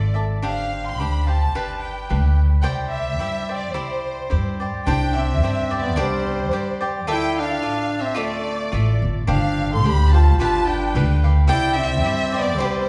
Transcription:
Already playing: G#1 F4 A4 D5 E5
0.14 A4 D5 E5
0.42 G1 D4 G4 C5 F5
0.86 C6
0.97 D2 D4 G4 C5 F5 B5
1.26 G4 C5 F5 A5
1.55 G1 D4 G4 B4 F5
1.83 G5
2.10 D2 D4 G4 B4 F5
2.63 C2 E4 G4 C5 D5 G5
2.91 E5
3.19 G2 E4 G4 C5 D5
3.49 G4 C5 D5
3.56 D5
3.73 C2 E4 G4 C5 D5
4.30 G2 E4 G4 C5 D5
4.60 G4 C5 D5
4.86 C2 D4 G4 C5 D5 G5
5.17 C4 E5
5.43 G2 D4 G4 C5 D5
5.71 G4 C5 D5
5.76 C4 E5
5.81 B3 D5
5.96 C2 G3 D4 G4 C5 D5
6.51 G2 D4 G4 C5 D5
6.81 G4 C5 D5
7.07 D2 F4 A4 D5 E5 G5
7.13 E4
7.40 D4 F5
7.62 A1 F4 A4 D5
8.00 C4 E5
8.15 D2 A3 F4 A4 D5 E5
8.72 A1 F4 A4 D5 E5
9.02 G1
9.27 G1 D4 G4 C5 F5
9.33 D4 F5
9.73 A4 C6
9.84 D2 D4 G4 C5 F5 B5
10.13 F4 G4 C5 F5 A5
10.39 G1 D4 F4 G4 B4 F5 A5
10.67 D4 G5
10.95 D2 D4 G4 B4 F5
11.24 G4 B4 F5
11.47 C2 E4 G4 C5 D5 G5
11.77 C4 E5
12.04 G2 E4 G4 C5 D5
12.32 G4 C5 D5
12.39 B3 D5
12.56 C2 G3 E4 C5
12.60 G3 G4 C5 D5
12.65 G3 B4
12.74 C5

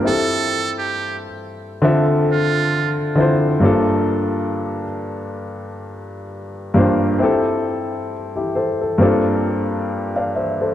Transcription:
0.02 C4 E4 G4
0.07 A4
0.78 G4
1.82 D3 C4 F4 E5
1.87 A4
2.32 F4
3.15 D3 C4 E4 F4
3.21 C5
3.60 G2 A#3 D4 F4
3.65 A4
6.74 G2 A#3 D4 F4
6.78 C5
7.18 C4 E4 G4
7.23 A4
8.36 E4 G4
8.55 A4 C5
8.81 A4
8.98 G2 A#3 C4 D4 F4
9.03 A4
10.16 D5 F5
10.35 C5 E5
10.61 A4 C5

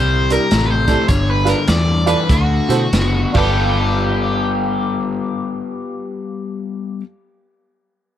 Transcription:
Already playing: C2 C3 G3 C5
0.30 D4 E4 G4 A#4, closed hi-hat
0.51 A1 C3 A3, snare, closed hi-hat
0.67 B4
0.71 C5
0.87 C3 A3 D4 E4 G4 A4, kick, snare, closed hi-hat
1.08 G1 G2 D3 C#5, kick, closed hi-hat
1.30 B4
1.45 D4 F4 A4 A#4 B4, snare, closed hi-hat
1.68 E2 G2 E3 D5, snare, closed hi-hat
2.06 G2 E3 D4 F4 A4 B4 D5, closed hi-hat
2.29 D2 D3 A3 F#4, kick, closed hi-hat
2.69 B2 E4 F#4 A4 C5, snare, closed hi-hat
2.93 F#1 D3 B3, snare, closed hi-hat
3.32 G1 G3 B3 D4 F4 A4, kick, crash
3.36 F4 G4 A4 B4

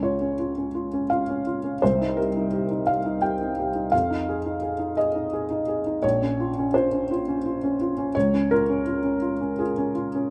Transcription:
Already playing: C#2 C#4
0.03 F4 C#5
0.21 C#4
0.39 F4
0.57 C#4
0.74 F4
0.93 C#4
1.10 F4 F5
1.29 C#4
1.47 F4
1.64 C#4
1.82 C2 C5
2.01 D#4
2.17 G4 A#4
2.36 D#4
2.53 G4
2.71 D#4
2.87 G4 F5
3.05 D#4
3.22 G4 G5
3.41 D#4
3.59 G4
3.75 D#4
3.92 F2 F5
4.10 D#4
4.29 G#4
4.45 D#4
4.62 G#4
4.79 D#4
4.97 G#4 D#5
5.15 D#4
5.33 G#4
5.50 D#4
5.68 G#4
5.86 D#4
6.03 A#1 C#5
6.22 C#4
6.40 F4
6.58 C#4
6.74 F4 C5
6.92 C#4
7.11 F4
7.28 C#4
7.46 F4
7.63 C#4
7.81 F4
7.98 C#4
8.15 C#2 C#5
8.34 C#4
8.51 F4 A#4
8.69 C#4
8.87 F4
9.03 C#4
9.22 F4
9.41 C#4
9.59 F4 G#4
9.78 C#4
9.95 F4
10.15 C#4

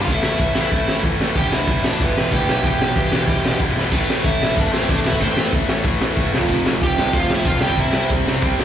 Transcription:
0.04 F4 F5, crash
0.08 A1 A2 E3 A3 E4, kick
0.12 E5
0.23 E2, snare
0.39 A1 A2 E3, kick, crash
0.43 A3
0.55 A1 A2 E3 A3, snare
0.59 A2
0.71 A1 A2 E3 A3, kick, crash
0.88 A1, snare
1.02 A1 A2 E3 A3, kick, crash
1.20 A1 A2 E3 A3, snare
1.35 E1 E2 B2 E3 G4 G5, kick, crash
1.51 D2 E4 E5, snare
1.67 B1 E2 B2 E3, kick, crash
1.83 A1 E2 B2 E3 D4, snare
1.89 D5
2.00 G1 E2 B2 E3 B3, kick, crash
2.05 B4
2.16 E1, snare
2.31 D2 E2 B2 E3 G4 G5, kick, crash
2.48 B1 E2 B2 E3, snare
2.63 E1 E2 B2 E3, kick, crash
2.67 G4 G5
2.79 B1, snare
2.95 E1 E2 B2 E3, kick, crash
3.11 E1 E2 B2 E3, snare
3.15 E2
3.27 E1 E2 B2 E3, kick, crash
3.43 E1, snare
3.59 E1 E2 B2 E3, kick, crash
3.76 E1 E2 B2 E3, snare
3.91 A1 A2 E3 A3, kick, crash
3.96 A3
4.07 A1, snare
4.24 A1 A2 E3 A3 E4 E5, kick, ride
4.40 E1 A2 E3 A3, snare
4.55 G1 A2 E3 A3 D4 D5, kick, ride
4.72 A1 E3 A3 C4 C5, snare
4.76 A2
4.89 E2 A2 E3 A3 D4 D5, kick, ride
4.93 A3
5.04 E1 A2 E3 A3 E4 E5, snare
5.13 kick
5.20 A1 A2 E3 A3 C4 C5, kick, ride
5.24 A3
5.36 A1, snare
5.52 A1 A2 E3 A3, kick, ride
5.68 A1 A2 E3 A3, snare
5.83 A1 A2 E3 A3, kick, ride
6.01 A1 E3 A3, snare
6.05 A2
6.16 E1 A2 E3 A3, kick, ride
6.20 E3 A3
6.33 F1 F2 C3 F3, snare
6.38 F3, kick
6.48 F1 F2 C3 F3, kick, ride
6.65 F1, snare
6.81 F1 F2 C3 F3 G4, kick, ride
6.87 G5
6.96 C2 F2 C3 F3, snare
7.13 D2 F2 C3 F3 F4 F5, kick, ride
7.18 F3
7.28 F1 F3, snare
7.32 F2 C3 E4 E5
7.45 B1 F2 C3 F3 F4 F5, kick, ride
7.61 C2 C3 G3 C4 G4 G5, snare
7.65 G3 C4
7.70 kick
7.76 C2 C3 G3 C4 E4 E5, kick, ride
7.92 C2, snare
8.10 C2 C3 G3 C4, kick, ride
8.26 C2 C3 G3 C4, snare
8.42 C2 C3 G3 C4, kick, ride
8.46 C4
8.58 C2 G3 C4, snare

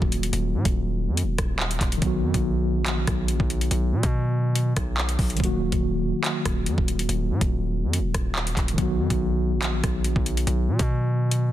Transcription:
Already playing: D#3 F#3 A#3 F#4
0.02 D#1, kick
0.12 closed hi-hat
0.23 closed hi-hat
0.33 D#1, closed hi-hat
0.54 A#2
0.65 D#1, kick, closed hi-hat
1.08 F#2
1.17 closed hi-hat
1.23 D#1
1.38 D#1, kick, cross-stick, closed hi-hat
1.60 clap
1.71 closed hi-hat
1.81 D#1, kick, clap, closed hi-hat
1.92 closed hi-hat
1.97 D#3 F#3
2.02 B1 B3, kick, closed hi-hat
2.07 F#4
2.23 F#2
2.34 B1, kick, closed hi-hat
2.77 A#1
2.86 clap, closed hi-hat
3.07 B1, kick, cross-stick, closed hi-hat
3.28 A#1, closed hi-hat
3.40 B1, kick
3.50 closed hi-hat
3.61 closed hi-hat
3.71 B1, closed hi-hat
3.92 B2
4.03 B2, kick, closed hi-hat
4.55 closed hi-hat
4.77 B1, kick, cross-stick, closed hi-hat
4.98 clap
5.09 closed hi-hat
5.19 B1, kick, open hi-hat
5.30 closed hi-hat
5.35 D#3 F#3, closed hi-hat
5.40 D#1 A#3, kick, closed hi-hat
5.45 F#4
5.72 D#1, kick, closed hi-hat
6.24 clap, closed hi-hat
6.46 D#1, kick, cross-stick, closed hi-hat
6.66 F#2, closed hi-hat
6.78 D#1, kick
6.88 closed hi-hat
6.99 closed hi-hat
7.09 D#1, closed hi-hat
7.30 A#2
7.41 D#1, kick, closed hi-hat
7.83 F#2
7.93 closed hi-hat
7.99 D#1
8.14 D#1, kick, cross-stick, closed hi-hat
8.36 clap
8.47 closed hi-hat
8.57 D#1, kick, clap, closed hi-hat
8.68 closed hi-hat
8.73 D#3 F#3
8.78 B1 B3, kick, closed hi-hat
8.83 F#4
8.99 F#2
9.10 B1, kick, closed hi-hat
9.53 A#1
9.62 clap, closed hi-hat
9.84 B1, kick, cross-stick, closed hi-hat
10.04 A#1, closed hi-hat
10.16 B1, kick
10.26 closed hi-hat
10.37 closed hi-hat
10.47 B1, closed hi-hat
10.68 B2
10.79 B2, kick, closed hi-hat
11.31 closed hi-hat

